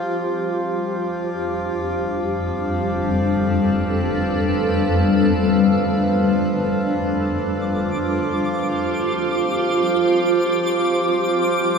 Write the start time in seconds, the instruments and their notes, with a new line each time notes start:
Already playing: harmonium F3 F4, ambient pad F4 G4 C5
0.66 ambient pad F2
1.00 ambient pad D4
1.24 ambient pad G3
2.33 ambient pad A4
2.84 ambient pad B4
6.97 ambient pad F4, synth texture D6
7.40 ambient pad C5
7.88 ambient pad G4